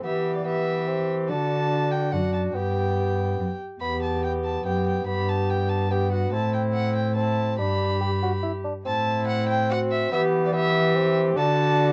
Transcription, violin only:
0, 0, Header, 1, 2, 480
1, 0, Start_track
1, 0, Tempo, 419287
1, 47, Time_signature, 3, 2, 24, 8
1, 13652, End_track
2, 0, Start_track
2, 0, Title_t, "Violin"
2, 0, Program_c, 0, 40
2, 54, Note_on_c, 0, 76, 73
2, 398, Note_off_c, 0, 76, 0
2, 405, Note_on_c, 0, 74, 59
2, 521, Note_off_c, 0, 74, 0
2, 531, Note_on_c, 0, 76, 80
2, 1228, Note_off_c, 0, 76, 0
2, 1472, Note_on_c, 0, 81, 91
2, 2188, Note_on_c, 0, 79, 80
2, 2205, Note_off_c, 0, 81, 0
2, 2429, Note_on_c, 0, 78, 77
2, 2446, Note_off_c, 0, 79, 0
2, 2665, Note_off_c, 0, 78, 0
2, 2672, Note_on_c, 0, 81, 65
2, 2763, Note_off_c, 0, 81, 0
2, 2911, Note_on_c, 0, 79, 77
2, 4096, Note_off_c, 0, 79, 0
2, 4357, Note_on_c, 0, 83, 83
2, 4583, Note_off_c, 0, 83, 0
2, 4606, Note_on_c, 0, 81, 67
2, 4840, Note_off_c, 0, 81, 0
2, 4847, Note_on_c, 0, 79, 78
2, 4938, Note_off_c, 0, 79, 0
2, 5086, Note_on_c, 0, 81, 71
2, 5320, Note_off_c, 0, 81, 0
2, 5330, Note_on_c, 0, 79, 74
2, 5563, Note_off_c, 0, 79, 0
2, 5570, Note_on_c, 0, 79, 68
2, 5794, Note_off_c, 0, 79, 0
2, 5801, Note_on_c, 0, 83, 84
2, 6053, Note_on_c, 0, 81, 78
2, 6071, Note_off_c, 0, 83, 0
2, 6292, Note_on_c, 0, 79, 86
2, 6309, Note_off_c, 0, 81, 0
2, 6515, Note_on_c, 0, 81, 80
2, 6532, Note_off_c, 0, 79, 0
2, 6766, Note_on_c, 0, 79, 79
2, 6783, Note_off_c, 0, 81, 0
2, 6996, Note_off_c, 0, 79, 0
2, 7002, Note_on_c, 0, 78, 74
2, 7231, Note_off_c, 0, 78, 0
2, 7238, Note_on_c, 0, 81, 86
2, 7473, Note_off_c, 0, 81, 0
2, 7485, Note_on_c, 0, 79, 71
2, 7577, Note_off_c, 0, 79, 0
2, 7706, Note_on_c, 0, 78, 95
2, 7948, Note_off_c, 0, 78, 0
2, 7959, Note_on_c, 0, 79, 76
2, 8186, Note_off_c, 0, 79, 0
2, 8193, Note_on_c, 0, 81, 77
2, 8670, Note_off_c, 0, 81, 0
2, 8683, Note_on_c, 0, 83, 83
2, 9634, Note_off_c, 0, 83, 0
2, 10146, Note_on_c, 0, 81, 97
2, 10589, Note_off_c, 0, 81, 0
2, 10616, Note_on_c, 0, 78, 107
2, 10852, Note_off_c, 0, 78, 0
2, 10859, Note_on_c, 0, 79, 99
2, 11094, Note_off_c, 0, 79, 0
2, 11113, Note_on_c, 0, 78, 108
2, 11205, Note_off_c, 0, 78, 0
2, 11351, Note_on_c, 0, 76, 96
2, 11581, Note_off_c, 0, 76, 0
2, 11594, Note_on_c, 0, 76, 107
2, 11685, Note_off_c, 0, 76, 0
2, 11967, Note_on_c, 0, 74, 82
2, 12070, Note_off_c, 0, 74, 0
2, 12078, Note_on_c, 0, 76, 109
2, 12770, Note_off_c, 0, 76, 0
2, 13025, Note_on_c, 0, 81, 111
2, 13652, Note_off_c, 0, 81, 0
2, 13652, End_track
0, 0, End_of_file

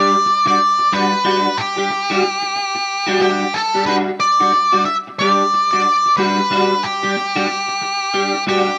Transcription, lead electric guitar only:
0, 0, Header, 1, 2, 480
1, 0, Start_track
1, 0, Tempo, 657174
1, 908, Time_signature, 4, 2, 24, 8
1, 6415, End_track
2, 0, Start_track
2, 0, Title_t, "Lead electric guitar"
2, 0, Program_c, 0, 29
2, 0, Note_on_c, 0, 74, 110
2, 338, Note_off_c, 0, 74, 0
2, 347, Note_on_c, 0, 74, 96
2, 681, Note_on_c, 0, 71, 102
2, 685, Note_off_c, 0, 74, 0
2, 1151, Note_on_c, 0, 67, 93
2, 1168, Note_off_c, 0, 71, 0
2, 2345, Note_off_c, 0, 67, 0
2, 2354, Note_on_c, 0, 67, 91
2, 2586, Note_on_c, 0, 69, 83
2, 2597, Note_off_c, 0, 67, 0
2, 2819, Note_off_c, 0, 69, 0
2, 2822, Note_on_c, 0, 71, 105
2, 2887, Note_off_c, 0, 71, 0
2, 3067, Note_on_c, 0, 74, 99
2, 3542, Note_off_c, 0, 74, 0
2, 3545, Note_on_c, 0, 76, 107
2, 3610, Note_off_c, 0, 76, 0
2, 3790, Note_on_c, 0, 74, 108
2, 4162, Note_off_c, 0, 74, 0
2, 4170, Note_on_c, 0, 74, 94
2, 4503, Note_off_c, 0, 74, 0
2, 4506, Note_on_c, 0, 71, 91
2, 4993, Note_on_c, 0, 67, 97
2, 5000, Note_off_c, 0, 71, 0
2, 6160, Note_off_c, 0, 67, 0
2, 6199, Note_on_c, 0, 67, 90
2, 6415, Note_off_c, 0, 67, 0
2, 6415, End_track
0, 0, End_of_file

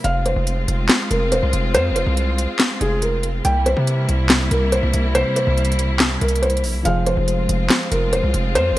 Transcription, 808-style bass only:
0, 0, Header, 1, 2, 480
1, 0, Start_track
1, 0, Key_signature, -4, "minor"
1, 0, Tempo, 425532
1, 49, Time_signature, 4, 2, 24, 8
1, 9913, End_track
2, 0, Start_track
2, 0, Title_t, "808-style bass"
2, 0, Program_c, 0, 38
2, 49, Note_on_c, 0, 29, 109
2, 395, Note_off_c, 0, 29, 0
2, 409, Note_on_c, 0, 29, 104
2, 755, Note_off_c, 0, 29, 0
2, 769, Note_on_c, 0, 29, 104
2, 999, Note_off_c, 0, 29, 0
2, 1249, Note_on_c, 0, 29, 105
2, 1489, Note_on_c, 0, 28, 100
2, 1506, Note_off_c, 0, 29, 0
2, 1603, Note_off_c, 0, 28, 0
2, 1609, Note_on_c, 0, 36, 98
2, 1724, Note_off_c, 0, 36, 0
2, 1729, Note_on_c, 0, 29, 102
2, 1968, Note_on_c, 0, 41, 98
2, 1985, Note_off_c, 0, 29, 0
2, 2149, Note_on_c, 0, 29, 98
2, 2166, Note_off_c, 0, 41, 0
2, 2320, Note_off_c, 0, 29, 0
2, 2329, Note_on_c, 0, 36, 103
2, 2790, Note_off_c, 0, 36, 0
2, 3169, Note_on_c, 0, 29, 102
2, 3860, Note_off_c, 0, 29, 0
2, 3889, Note_on_c, 0, 36, 112
2, 4235, Note_off_c, 0, 36, 0
2, 4249, Note_on_c, 0, 48, 102
2, 4594, Note_off_c, 0, 48, 0
2, 4609, Note_on_c, 0, 36, 105
2, 5070, Note_off_c, 0, 36, 0
2, 5089, Note_on_c, 0, 36, 99
2, 5434, Note_off_c, 0, 36, 0
2, 5449, Note_on_c, 0, 36, 102
2, 5564, Note_off_c, 0, 36, 0
2, 5570, Note_on_c, 0, 36, 99
2, 5915, Note_off_c, 0, 36, 0
2, 6169, Note_on_c, 0, 36, 104
2, 6975, Note_off_c, 0, 36, 0
2, 7009, Note_on_c, 0, 36, 108
2, 7489, Note_on_c, 0, 34, 93
2, 7506, Note_off_c, 0, 36, 0
2, 7609, Note_on_c, 0, 36, 101
2, 7626, Note_off_c, 0, 34, 0
2, 7723, Note_off_c, 0, 36, 0
2, 7729, Note_on_c, 0, 29, 108
2, 8075, Note_off_c, 0, 29, 0
2, 8089, Note_on_c, 0, 29, 102
2, 8435, Note_off_c, 0, 29, 0
2, 8449, Note_on_c, 0, 29, 106
2, 8680, Note_off_c, 0, 29, 0
2, 8929, Note_on_c, 0, 29, 106
2, 9169, Note_on_c, 0, 28, 98
2, 9186, Note_off_c, 0, 29, 0
2, 9283, Note_off_c, 0, 28, 0
2, 9289, Note_on_c, 0, 36, 100
2, 9404, Note_off_c, 0, 36, 0
2, 9409, Note_on_c, 0, 29, 103
2, 9648, Note_on_c, 0, 41, 96
2, 9665, Note_off_c, 0, 29, 0
2, 9828, Note_on_c, 0, 29, 101
2, 9845, Note_off_c, 0, 41, 0
2, 9913, Note_off_c, 0, 29, 0
2, 9913, End_track
0, 0, End_of_file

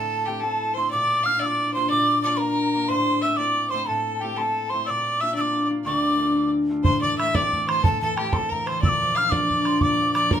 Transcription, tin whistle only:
0, 0, Header, 1, 2, 480
1, 0, Start_track
1, 0, Tempo, 330215
1, 1321, Time_signature, 6, 3, 24, 8
1, 15117, End_track
2, 0, Start_track
2, 0, Title_t, "Tin whistle"
2, 0, Program_c, 0, 75
2, 0, Note_on_c, 0, 81, 100
2, 404, Note_on_c, 0, 79, 88
2, 426, Note_off_c, 0, 81, 0
2, 629, Note_on_c, 0, 81, 89
2, 651, Note_off_c, 0, 79, 0
2, 1106, Note_off_c, 0, 81, 0
2, 1119, Note_on_c, 0, 84, 91
2, 1319, Note_off_c, 0, 84, 0
2, 1341, Note_on_c, 0, 86, 112
2, 1829, Note_on_c, 0, 89, 94
2, 1851, Note_off_c, 0, 86, 0
2, 2053, Note_on_c, 0, 88, 77
2, 2075, Note_off_c, 0, 89, 0
2, 2122, Note_on_c, 0, 86, 84
2, 2136, Note_off_c, 0, 88, 0
2, 2526, Note_off_c, 0, 86, 0
2, 2535, Note_on_c, 0, 84, 89
2, 2745, Note_off_c, 0, 84, 0
2, 2769, Note_on_c, 0, 86, 108
2, 3219, Note_off_c, 0, 86, 0
2, 3248, Note_on_c, 0, 86, 83
2, 3472, Note_on_c, 0, 82, 96
2, 3493, Note_off_c, 0, 86, 0
2, 4192, Note_on_c, 0, 84, 96
2, 4213, Note_off_c, 0, 82, 0
2, 4678, Note_off_c, 0, 84, 0
2, 4687, Note_on_c, 0, 88, 81
2, 4896, Note_on_c, 0, 86, 90
2, 4917, Note_off_c, 0, 88, 0
2, 5389, Note_on_c, 0, 84, 88
2, 5411, Note_off_c, 0, 86, 0
2, 5642, Note_on_c, 0, 81, 84
2, 5664, Note_off_c, 0, 84, 0
2, 6107, Note_on_c, 0, 79, 74
2, 6128, Note_off_c, 0, 81, 0
2, 6361, Note_on_c, 0, 84, 72
2, 6383, Note_off_c, 0, 79, 0
2, 6408, Note_on_c, 0, 81, 79
2, 6422, Note_off_c, 0, 84, 0
2, 6823, Note_on_c, 0, 84, 85
2, 6845, Note_off_c, 0, 81, 0
2, 7057, Note_off_c, 0, 84, 0
2, 7066, Note_on_c, 0, 88, 104
2, 7127, Note_on_c, 0, 86, 113
2, 7141, Note_off_c, 0, 88, 0
2, 7574, Note_on_c, 0, 88, 95
2, 7596, Note_off_c, 0, 86, 0
2, 7798, Note_off_c, 0, 88, 0
2, 7806, Note_on_c, 0, 88, 81
2, 7864, Note_on_c, 0, 86, 88
2, 7879, Note_off_c, 0, 88, 0
2, 8257, Note_off_c, 0, 86, 0
2, 8517, Note_on_c, 0, 85, 79
2, 8692, Note_off_c, 0, 85, 0
2, 8692, Note_on_c, 0, 86, 79
2, 9440, Note_off_c, 0, 86, 0
2, 9960, Note_on_c, 0, 84, 96
2, 10208, Note_on_c, 0, 86, 84
2, 10230, Note_off_c, 0, 84, 0
2, 10434, Note_off_c, 0, 86, 0
2, 10442, Note_on_c, 0, 88, 83
2, 10687, Note_on_c, 0, 86, 79
2, 10709, Note_off_c, 0, 88, 0
2, 11166, Note_on_c, 0, 84, 87
2, 11188, Note_off_c, 0, 86, 0
2, 11395, Note_off_c, 0, 84, 0
2, 11404, Note_on_c, 0, 81, 108
2, 11644, Note_off_c, 0, 81, 0
2, 11654, Note_on_c, 0, 81, 80
2, 11873, Note_on_c, 0, 79, 77
2, 11895, Note_off_c, 0, 81, 0
2, 12109, Note_on_c, 0, 84, 73
2, 12131, Note_off_c, 0, 79, 0
2, 12162, Note_on_c, 0, 81, 79
2, 12176, Note_off_c, 0, 84, 0
2, 12381, Note_on_c, 0, 82, 84
2, 12403, Note_off_c, 0, 81, 0
2, 12618, Note_on_c, 0, 84, 82
2, 12639, Note_off_c, 0, 82, 0
2, 12842, Note_off_c, 0, 84, 0
2, 12857, Note_on_c, 0, 88, 99
2, 12921, Note_on_c, 0, 86, 108
2, 12936, Note_off_c, 0, 88, 0
2, 13335, Note_on_c, 0, 89, 97
2, 13357, Note_off_c, 0, 86, 0
2, 13534, Note_on_c, 0, 86, 91
2, 13556, Note_off_c, 0, 89, 0
2, 14053, Note_on_c, 0, 84, 97
2, 14075, Note_off_c, 0, 86, 0
2, 14266, Note_on_c, 0, 86, 114
2, 14288, Note_off_c, 0, 84, 0
2, 14741, Note_off_c, 0, 86, 0
2, 14750, Note_on_c, 0, 86, 94
2, 14974, Note_off_c, 0, 86, 0
2, 15022, Note_on_c, 0, 82, 87
2, 15117, Note_off_c, 0, 82, 0
2, 15117, End_track
0, 0, End_of_file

